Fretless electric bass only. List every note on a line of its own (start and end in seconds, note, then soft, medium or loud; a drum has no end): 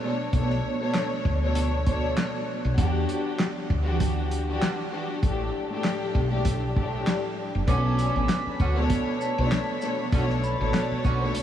0.33 0.60 B1 loud
1.25 2.13 D2 medium
2.65 2.76 B1 medium
2.78 3.05 E2 loud
3.70 4.58 D2 loud
5.23 5.50 A1 loud
6.15 7.03 B1 medium
7.55 7.66 F#1 medium
7.68 8.09 B1 loud
8.16 8.27 A1 medium
8.46 muted fretless electric bass stroke soft
8.60 8.86 D2 medium
9.38 9.50 B1 loud
10.13 10.54 B1 loud
10.61 10.72 A1 medium
10.91 muted fretless electric bass stroke medium
11.05 11.31 B1 medium